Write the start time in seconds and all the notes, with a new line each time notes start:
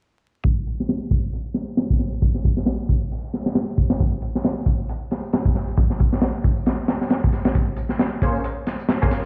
0.44 kick, closed hi-hat, tambourine
0.67 closed hi-hat, tambourine
0.80 snare
0.89 snare, closed hi-hat
1.11 kick, closed hi-hat, tambourine
1.33 closed hi-hat
1.54 snare, closed hi-hat
1.68 tambourine
1.77 snare, closed hi-hat, tambourine
1.90 kick
1.99 snare, closed hi-hat, tambourine
2.12 closed hi-hat, tambourine
2.22 kick, closed hi-hat, tambourine
2.35 snare
2.44 kick, closed hi-hat, tambourine
2.57 snare
2.66 snare, closed hi-hat, tambourine
2.89 kick, closed hi-hat, tambourine
3.02 tambourine
3.11 open hi-hat, tambourine
3.33 snare, closed hi-hat, tambourine
3.46 snare, tambourine
3.54 snare, closed hi-hat, tambourine
3.78 kick, closed hi-hat, tambourine
3.90 snare, closed hi-hat, tambourine
3.99 kick, closed hi-hat, tambourine
4.22 closed hi-hat, tambourine
4.35 snare, tambourine
4.44 snare, closed hi-hat, tambourine
4.66 kick, closed hi-hat, tambourine
4.80 tambourine
4.89 closed hi-hat, tambourine
5.11 snare, closed hi-hat, tambourine
5.24 tambourine
5.33 snare, closed hi-hat, tambourine
5.45 kick
5.55 snare, closed hi-hat, tambourine
5.68 closed hi-hat, tambourine
5.77 kick, closed hi-hat, tambourine
5.90 snare
5.99 kick, closed hi-hat, tambourine
6.13 snare, tambourine
6.22 snare, closed hi-hat, tambourine
6.44 kick, closed hi-hat, tambourine
6.57 tambourine
6.66 snare, closed hi-hat, tambourine
6.88 snare, closed hi-hat, tambourine
7.01 snare, tambourine
7.10 snare, closed hi-hat, tambourine
7.24 kick
7.33 snare, closed hi-hat, tambourine
7.45 snare, closed hi-hat, tambourine
7.55 kick, closed hi-hat, tambourine
7.77 closed hi-hat, tambourine
7.89 snare, tambourine
7.99 snare, closed hi-hat, tambourine
8.22 A#3 C#4 G#4 C5, kick, closed hi-hat, tambourine
8.35 tambourine
8.44 closed hi-hat, tambourine
8.67 snare, closed hi-hat, tambourine
8.79 tambourine
8.89 snare, closed hi-hat, tambourine
9.02 A#3 C#4 G#4 C5, kick
9.11 snare, closed hi-hat, tambourine